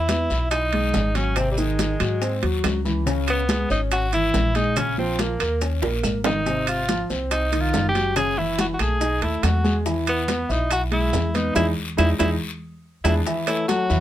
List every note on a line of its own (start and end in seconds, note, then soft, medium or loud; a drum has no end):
0.00 0.26 E2 medium
0.00 0.48 E4 medium
0.09 0.26 B3 medium
0.09 0.26 B4 soft
0.09 high bongo soft
0.09 high conga medium
0.09 high timbale medium
0.09 low timbale soft
0.09 short guiro medium
0.09 maracas medium
0.30 0.90 B1 medium
0.30 0.65 E4 medium
0.30 0.65 E5 medium
0.30 high bongo soft
0.30 high conga soft
0.30 short guiro medium
0.30 maracas soft
0.51 1.18 D#4 medium
0.51 high bongo medium
0.51 high conga soft
0.51 high timbale medium
0.51 long guiro medium
0.51 claves medium
0.51 maracas medium
0.73 1.08 G#3 medium
0.73 1.08 G#4 medium
0.73 high conga soft
0.73 high timbale medium
0.94 1.94 G#1 medium
0.94 high bongo soft
0.94 low bongo medium
0.94 high conga medium
0.94 low timbale medium
0.94 short guiro medium
0.94 maracas medium
1.15 1.33 F#3 medium
1.15 1.38 C#4 medium
1.15 1.33 F#4 medium
1.15 high bongo soft
1.15 high timbale medium
1.15 short guiro medium
1.15 maracas soft
1.36 1.54 C3 medium
1.36 1.54 C4 medium
1.36 1.51 C4 medium
1.36 high bongo medium
1.36 high conga soft
1.36 high timbale medium
1.36 long guiro medium
1.36 claves medium
1.36 maracas medium
1.51 1.60 G3 medium
1.57 1.93 D#3 medium
1.57 2.43 G#3 medium
1.57 1.93 D#4 medium
1.57 high bongo soft
1.57 high conga soft
1.57 maracas medium
1.79 high bongo medium
1.79 high conga medium
1.79 high timbale medium
1.79 low timbale medium
1.79 short guiro medium
1.79 maracas medium
2.00 2.40 G#2 medium
2.00 2.17 F#3 medium
2.00 2.18 F#4 medium
2.00 high bongo soft
2.00 high conga soft
2.00 high timbale medium
2.00 short guiro medium
2.00 claves medium
2.00 maracas soft
2.21 2.39 C4 medium
2.21 2.39 C5 medium
2.21 high bongo medium
2.21 high conga soft
2.21 long guiro medium
2.21 maracas medium
2.43 2.63 D#2 medium
2.43 2.78 F#3 medium
2.43 2.78 F#4 medium
2.43 high conga soft
2.43 high timbale medium
2.64 3.64 C#2 medium
2.64 high bongo soft
2.64 low bongo medium
2.64 high conga medium
2.64 high timbale medium
2.64 low timbale medium
2.64 short guiro medium
2.64 claves soft
2.64 maracas medium
2.85 3.02 E3 medium
2.85 3.03 E4 medium
2.85 high bongo soft
2.85 high conga medium
2.85 short guiro medium
2.85 maracas soft
3.06 3.41 C#3 medium
3.06 3.41 C#4 medium
3.06 high bongo medium
3.06 long guiro medium
3.06 maracas medium
3.28 3.68 B3 medium
3.28 high bongo soft
3.28 high conga soft
3.28 high timbale medium
3.28 claves medium
3.28 maracas medium
3.49 3.66 G#3 medium
3.49 3.66 G#4 medium
3.49 high bongo soft
3.49 high conga medium
3.49 high timbale medium
3.49 low timbale medium
3.49 short guiro medium
3.49 maracas medium
3.70 4.30 G#1 medium
3.70 4.05 C#4 medium
3.70 3.81 D#4 medium
3.70 4.05 C#5 medium
3.70 high bongo soft
3.70 high conga soft
3.70 short guiro medium
3.70 maracas soft
3.91 4.12 F#4 medium
3.91 high bongo medium
3.91 high conga soft
3.91 high timbale medium
3.91 long guiro medium
3.91 claves medium
3.91 maracas medium
4.12 4.48 E3 medium
4.12 4.48 E4 medium
4.12 4.57 E4 medium
4.12 high conga soft
4.12 high timbale medium
4.12 maracas medium
4.34 5.34 A#1 medium
4.34 high bongo soft
4.34 low bongo medium
4.34 high conga medium
4.34 low timbale medium
4.34 short guiro medium
4.34 maracas medium
4.55 4.73 G#3 medium
4.55 4.79 D#4 medium
4.55 4.73 G#4 medium
4.55 high bongo soft
4.55 high timbale medium
4.55 short guiro medium
4.55 maracas soft
4.76 4.94 C#3 medium
4.76 4.94 C#4 medium
4.76 4.98 C#4 medium
4.76 high bongo medium
4.76 high conga soft
4.76 high timbale medium
4.76 long guiro medium
4.76 claves medium
4.76 maracas medium
4.98 5.33 F3 medium
4.98 5.21 C4 medium
4.98 5.33 F4 medium
4.98 high bongo soft
4.98 high conga soft
5.19 5.62 A#3 medium
5.19 high bongo soft
5.19 high conga medium
5.19 high timbale medium
5.19 low timbale medium
5.19 short guiro medium
5.19 maracas medium
5.40 5.79 D#2 medium
5.40 5.58 A#3 medium
5.40 5.58 A#4 medium
5.40 high bongo soft
5.40 high conga soft
5.40 high timbale medium
5.40 short guiro medium
5.40 claves medium
5.40 maracas soft
5.61 5.79 C#4 medium
5.61 5.79 C#5 medium
5.61 high bongo medium
5.61 high conga soft
5.61 long guiro medium
5.61 maracas medium
5.82 6.02 A#1 medium
5.82 6.17 A#3 medium
5.82 6.17 A#4 medium
5.82 high bongo medium
5.82 high conga soft
5.82 high timbale medium
6.03 7.04 G#1 medium
6.03 high conga medium
6.03 low timbale medium
6.03 short guiro medium
6.03 claves medium
6.03 maracas medium
6.24 6.42 D#3 medium
6.24 6.43 D#4 medium
6.24 6.65 D#4 medium
6.24 low bongo medium
6.24 high conga medium
6.24 low timbale medium
6.24 short guiro medium
6.24 maracas soft
6.46 6.81 C3 medium
6.46 6.81 C4 medium
6.46 high bongo medium
6.46 high conga soft
6.46 long guiro medium
6.46 maracas medium
6.67 7.08 F4 medium
6.67 high bongo soft
6.67 high conga soft
6.67 high timbale medium
6.67 claves medium
6.67 maracas medium
6.89 7.06 F3 medium
6.89 7.07 F4 medium
6.89 high bongo medium
6.89 high conga medium
6.89 high timbale medium
6.89 low timbale soft
6.89 short guiro medium
6.89 maracas medium
7.10 7.70 C2 medium
7.10 7.45 C4 medium
7.10 7.45 C5 medium
7.10 high bongo soft
7.10 high conga soft
7.10 short guiro medium
7.10 maracas soft
7.31 7.62 D#4 medium
7.31 high bongo medium
7.31 high conga soft
7.31 high timbale medium
7.31 long guiro medium
7.31 claves medium
7.31 maracas medium
7.52 7.87 D#3 medium
7.52 7.87 D#4 medium
7.52 high conga soft
7.52 high timbale medium
7.52 maracas medium
7.61 7.88 F4 medium
7.74 8.74 F#1 medium
7.74 high bongo soft
7.74 low bongo medium
7.74 high conga medium
7.74 low timbale medium
7.74 short guiro medium
7.74 maracas medium
7.89 8.15 G4 medium
7.95 8.13 F#3 medium
7.95 8.13 F#4 medium
7.95 high bongo soft
7.95 high timbale medium
7.95 short guiro medium
7.95 maracas soft
8.16 8.34 C#3 medium
8.16 8.34 C#4 medium
8.16 8.40 G#4 medium
8.16 high bongo medium
8.16 high conga soft
8.16 high timbale medium
8.16 long guiro medium
8.16 claves medium
8.16 maracas medium
8.37 8.72 E3 medium
8.37 8.73 E4 medium
8.37 8.59 E4 medium
8.37 high bongo soft
8.37 high conga soft
8.59 8.66 F#4 medium
8.59 high bongo medium
8.59 high conga medium
8.59 high timbale medium
8.59 low timbale medium
8.59 short guiro medium
8.59 maracas medium
8.74 8.83 F#4 medium
8.79 9.19 B1 medium
8.79 8.97 A3 medium
8.79 9.23 G#4 medium
8.79 8.97 A4 medium
8.79 high bongo soft
8.79 high conga soft
8.79 high timbale medium
8.79 short guiro medium
8.79 claves medium
8.79 maracas soft
9.01 9.18 D#4 medium
9.01 9.18 D#5 medium
9.01 high bongo medium
9.01 high conga soft
9.01 long guiro medium
9.01 maracas medium
9.21 9.42 D#2 medium
9.21 9.57 A3 medium
9.21 9.45 E4 medium
9.21 9.57 A4 medium
9.21 high conga soft
9.21 high timbale medium
9.43 10.44 E2 medium
9.43 9.76 F#4 medium
9.43 high bongo soft
9.43 low bongo medium
9.43 high conga medium
9.43 high timbale medium
9.43 low timbale medium
9.43 short guiro medium
9.43 claves medium
9.43 maracas medium
9.64 9.82 G#3 medium
9.64 9.82 G#4 medium
9.64 high bongo soft
9.64 high conga medium
9.64 short guiro medium
9.64 maracas soft
9.86 10.21 E3 medium
9.86 10.21 E4 medium
9.86 high bongo medium
9.86 long guiro medium
9.86 maracas medium
10.07 10.53 B3 medium
10.07 high bongo soft
10.07 high conga soft
10.07 high timbale medium
10.07 claves medium
10.07 maracas soft
10.28 10.46 B3 medium
10.28 10.46 B4 medium
10.28 high bongo soft
10.28 high conga medium
10.28 high timbale medium
10.28 low timbale medium
10.28 short guiro medium
10.28 maracas medium
10.49 11.10 B1 medium
10.49 10.72 D#4 medium
10.49 10.84 E4 medium
10.49 10.84 E5 medium
10.49 high bongo soft
10.49 high conga soft
10.49 short guiro medium
10.49 maracas soft
10.70 10.82 F#4 medium
10.70 high bongo medium
10.70 high conga soft
10.70 high timbale medium
10.70 long guiro medium
10.70 claves medium
10.70 maracas medium
10.91 11.27 G#3 medium
10.91 11.37 E4 medium
10.91 11.27 G#4 medium
10.91 high conga soft
10.91 high timbale medium
11.13 11.53 E2 medium
11.13 high bongo soft
11.13 low bongo medium
11.13 high conga medium
11.13 low timbale medium
11.13 short guiro medium
11.13 maracas medium
11.34 11.52 B3 medium
11.34 11.55 D#4 medium
11.34 11.52 B4 medium
11.34 high bongo soft
11.34 high conga medium
11.34 high timbale medium
11.34 short guiro medium
11.34 maracas soft
11.55 11.72 E2 medium
11.55 11.69 D#4 medium
11.55 11.69 E4 medium
11.55 11.66 E4 medium
11.55 11.69 G#4 medium
11.55 low bongo medium
11.55 high conga medium
11.55 high timbale medium
11.55 long guiro medium
11.55 claves medium
11.55 maracas medium
11.97 12.14 E2 medium
11.97 12.12 D#4 medium
11.97 12.12 E4 medium
11.97 12.09 E4 medium
11.97 12.11 G#4 medium
11.97 low bongo medium
11.97 high conga medium
11.97 high timbale medium
11.97 long guiro medium
11.97 claves medium
11.97 maracas medium
12.19 12.36 E2 medium
12.19 12.33 D#4 medium
12.19 12.33 E4 medium
12.19 12.30 E4 medium
12.19 12.33 G#4 medium
12.19 low bongo medium
12.19 high conga medium
12.19 high timbale medium
12.19 long guiro medium
12.19 claves medium
12.19 maracas medium
13.04 13.21 E2 medium
13.04 13.19 D4 medium
13.04 13.15 E4 medium
13.04 13.19 E4 medium
13.04 13.19 G#4 medium
13.04 low bongo medium
13.04 high conga medium
13.04 high timbale medium
13.04 long guiro medium
13.04 claves medium
13.04 maracas medium
13.26 13.43 E3 medium
13.26 13.44 E4 medium
13.26 13.44 E5 medium
13.26 high bongo medium
13.26 high conga soft
13.26 long guiro medium
13.26 maracas medium
13.47 13.67 E3 medium
13.47 13.82 A3 medium
13.47 13.67 E4 medium
13.47 13.82 A4 medium
13.47 13.82 C#5 medium
13.47 high bongo soft
13.47 high conga soft
13.47 high timbale medium
13.47 claves medium
13.47 maracas medium
13.68 14.00 F#3 medium
13.68 14.00 F#4 loud
13.68 high bongo medium
13.68 high conga medium
13.68 high timbale medium
13.68 low timbale medium
13.68 short guiro medium
13.68 maracas medium
13.90 14.00 E2 medium
13.90 14.00 E3 medium
13.90 14.00 E4 medium
13.90 14.00 E5 medium
13.90 high bongo soft
13.90 high conga soft
13.90 short guiro medium
13.90 maracas soft